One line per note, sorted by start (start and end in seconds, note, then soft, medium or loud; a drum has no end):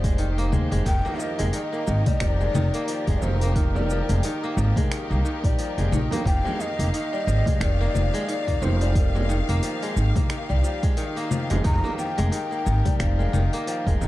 0.00 0.54 F1 medium
0.00 0.17 D#3 medium
0.00 0.24 F3 medium
0.00 0.24 G3 medium
0.00 0.24 G#3 medium
0.00 0.38 A#3 medium
0.00 14.08 D#4 medium
0.00 14.08 G4 medium
0.00 0.86 C5 medium
0.00 open hi-hat soft
0.04 kick loud
0.04 shaker soft
0.18 0.85 D#3 loud
0.18 open hi-hat medium
0.18 shaker soft
0.38 1.04 A#3 loud
0.38 open hi-hat soft
0.38 shaker soft
0.52 0.66 D#2 medium
0.52 0.70 G#3 medium
0.52 low conga medium
0.52 shaker medium
0.71 0.82 F1 medium
0.71 0.91 G#3 loud
0.71 open hi-hat soft
0.71 shaker soft
0.86 1.00 F1 medium
0.86 1.52 D#3 loud
0.86 6.26 A#4 medium
0.86 1.21 G5 loud
0.86 kick loud
0.86 open hi-hat medium
0.86 shaker soft
1.05 1.72 A#3 medium
1.05 frame drum medium
1.05 shaker soft
1.19 1.59 F3 medium
1.19 1.54 D#5 loud
1.19 shaker medium
1.39 1.50 F1 medium
1.39 1.59 G#3 loud
1.39 open hi-hat soft
1.39 shaker soft
1.53 1.86 D#3 medium
1.53 2.23 D#5 loud
1.53 open hi-hat medium
1.53 shaker soft
1.72 2.74 A#3 medium
1.72 shaker soft
1.87 2.01 G#1 medium
1.87 2.54 D#3 medium
1.87 shaker medium
2.06 2.60 G3 medium
2.06 kick medium
2.06 open hi-hat soft
2.06 low conga medium
2.06 shaker soft
2.20 2.46 F1 loud
2.20 2.60 F3 medium
2.20 2.88 D5 loud
2.20 finger snap medium
2.20 kick loud
2.20 open hi-hat medium
2.20 shaker soft
2.41 2.60 G#3 medium
2.41 shaker soft
2.54 2.69 F1 medium
2.54 3.22 D#3 loud
2.54 low conga medium
2.54 shaker medium
2.74 3.42 A#3 loud
2.74 open hi-hat soft
2.74 shaker soft
2.88 3.27 F3 medium
2.88 2.93 D#5 medium
2.88 open hi-hat medium
2.88 shaker soft
2.92 3.14 D5 loud
3.07 3.18 F1 medium
3.07 3.27 G#3 medium
3.07 kick medium
3.07 open hi-hat soft
3.07 shaker soft
3.16 3.24 D5 medium
3.22 4.00 F1 medium
3.22 3.55 D#3 medium
3.22 3.57 C5 medium
3.22 frame drum medium
3.22 shaker medium
3.41 4.43 A#3 medium
3.41 open hi-hat soft
3.41 shaker soft
3.55 4.23 D#3 medium
3.55 4.23 A#4 medium
3.55 kick loud
3.55 open hi-hat medium
3.55 shaker soft
3.75 4.28 G3 medium
3.75 frame drum medium
3.75 shaker soft
3.90 4.28 F3 medium
3.90 shaker medium
4.09 4.19 F1 loud
4.09 4.28 G#3 medium
4.09 open hi-hat soft
4.09 shaker soft
4.23 4.90 D#3 loud
4.23 open hi-hat medium
4.23 shaker soft
4.44 5.10 A#3 loud
4.44 shaker soft
4.57 4.71 G#1 loud
4.57 4.96 F3 medium
4.57 shaker medium
4.76 4.96 G#3 loud
4.76 kick loud
4.76 open hi-hat soft
4.76 low conga medium
4.76 shaker soft
4.92 5.24 D#3 medium
4.92 finger snap medium
4.92 open hi-hat medium
4.92 shaker soft
5.11 5.20 C2 loud
5.11 6.12 A#3 medium
5.11 shaker soft
5.25 5.91 D#3 medium
5.25 shaker medium
5.44 5.54 A#1 medium
5.44 5.97 G3 medium
5.44 kick loud
5.44 open hi-hat soft
5.44 shaker soft
5.59 5.97 F3 medium
5.59 open hi-hat medium
5.59 shaker soft
5.78 5.88 F1 medium
5.78 5.97 G#3 medium
5.78 open hi-hat soft
5.78 shaker soft
5.92 6.06 A#1 medium
5.92 6.59 D#3 loud
5.92 low conga medium
5.92 shaker medium
6.11 6.79 A#3 loud
6.11 open hi-hat soft
6.11 frame drum medium
6.11 shaker soft
6.25 6.39 F1 loud
6.25 6.64 F3 medium
6.25 11.65 F5 medium
6.25 6.62 G5 loud
6.25 kick loud
6.25 open hi-hat medium
6.25 shaker soft
6.45 6.64 G#3 medium
6.45 frame drum medium
6.45 shaker soft
6.60 6.93 D#3 medium
6.60 6.93 D#5 loud
6.60 shaker medium
6.79 6.89 F1 loud
6.79 7.80 A#3 medium
6.79 open hi-hat soft
6.79 shaker soft
6.94 7.60 D#3 medium
6.94 7.61 D#5 loud
6.94 open hi-hat medium
6.94 shaker soft
7.13 7.65 G3 medium
7.13 shaker soft
7.27 7.41 G#1 loud
7.27 7.65 F3 medium
7.27 shaker medium
7.46 7.65 G#3 medium
7.46 kick loud
7.46 open hi-hat soft
7.46 low conga medium
7.46 shaker soft
7.61 7.86 F1 loud
7.61 8.27 D#3 loud
7.61 8.28 D5 loud
7.61 7.65 D#5 loud
7.61 finger snap medium
7.61 kick loud
7.61 open hi-hat medium
7.61 shaker soft
7.81 8.47 A#3 medium
7.81 shaker soft
7.94 8.08 F1 medium
7.94 8.33 F3 medium
7.94 low conga medium
7.94 shaker medium
8.14 8.33 G#3 loud
8.14 open hi-hat soft
8.14 shaker soft
8.28 8.61 D#3 medium
8.28 8.64 D5 loud
8.28 open hi-hat medium
8.28 shaker soft
8.47 8.57 F1 medium
8.47 9.48 A#3 medium
8.47 kick medium
8.47 open hi-hat soft
8.47 shaker soft
8.62 9.39 F1 medium
8.62 9.28 D#3 medium
8.62 8.95 C5 medium
8.62 frame drum medium
8.62 shaker medium
8.81 9.34 G3 medium
8.81 open hi-hat soft
8.81 shaker soft
8.95 9.34 F3 medium
8.95 9.59 A#4 medium
8.95 kick loud
8.95 open hi-hat soft
8.95 shaker soft
9.15 9.34 G#3 medium
9.15 frame drum medium
9.15 shaker soft
9.29 9.96 D#3 loud
9.29 shaker medium
9.49 9.59 F1 loud
9.49 10.16 A#3 loud
9.49 open hi-hat soft
9.49 shaker soft
9.63 10.01 F3 medium
9.63 open hi-hat medium
9.63 shaker soft
9.82 10.01 G#3 medium
9.82 open hi-hat soft
9.82 shaker soft
9.96 10.10 G#1 medium
9.96 10.28 D#3 medium
9.96 shaker medium
10.16 11.16 A#3 medium
10.16 kick loud
10.16 open hi-hat soft
10.16 low conga medium
10.16 shaker soft
10.29 10.96 D#3 medium
10.29 finger snap medium
10.29 open hi-hat medium
10.29 shaker soft
10.49 10.60 C2 medium
10.49 11.02 G3 medium
10.49 shaker soft
10.63 11.02 F3 medium
10.63 shaker medium
10.83 11.02 G#3 medium
10.83 kick loud
10.83 open hi-hat soft
10.83 shaker soft
10.97 11.63 D#3 loud
10.97 open hi-hat medium
10.97 shaker soft
11.16 11.83 A#3 loud
11.16 open hi-hat soft
11.16 shaker soft
11.31 11.70 F3 medium
11.31 low conga medium
11.31 shaker medium
11.50 11.61 F1 medium
11.50 11.70 G#3 medium
11.50 open hi-hat soft
11.50 frame drum medium
11.50 shaker soft
11.64 11.79 F1 medium
11.64 12.30 D#3 loud
11.64 14.08 A#4 medium
11.64 11.96 A#5 loud
11.64 kick loud
11.64 open hi-hat soft
11.64 shaker soft
11.84 12.50 A#3 medium
11.84 frame drum medium
11.84 shaker soft
11.98 12.37 F3 medium
11.98 12.30 G5 medium
11.98 shaker medium
12.18 12.28 F1 loud
12.18 12.37 G#3 loud
12.18 open hi-hat soft
12.18 shaker soft
12.31 12.64 D#3 medium
12.31 12.95 G5 loud
12.31 open hi-hat medium
12.31 shaker soft
12.51 13.53 A#3 medium
12.51 shaker soft
12.65 12.80 G#1 loud
12.65 13.32 D#3 medium
12.65 shaker medium
12.85 13.38 G3 medium
12.85 kick loud
12.85 open hi-hat soft
12.85 low conga medium
12.85 shaker soft
12.99 13.25 F1 loud
12.99 13.38 F3 medium
12.99 13.63 F5 loud
12.99 finger snap medium
12.99 kick loud
12.99 open hi-hat medium
12.99 shaker soft
13.19 13.38 G#3 medium
13.19 shaker soft
13.33 13.47 F1 medium
13.33 14.00 D#3 loud
13.33 low conga medium
13.33 shaker medium
13.53 14.08 A#3 loud
13.53 open hi-hat soft
13.53 shaker soft
13.67 14.06 F3 medium
13.67 13.73 G5 medium
13.67 open hi-hat medium
13.67 shaker soft
13.72 13.99 F5 medium
13.87 13.97 F1 medium
13.87 14.06 G#3 medium
13.87 kick medium
13.87 open hi-hat soft
13.87 shaker soft
14.01 14.08 F1 medium
14.01 14.08 D#3 medium
14.01 frame drum medium
14.01 shaker medium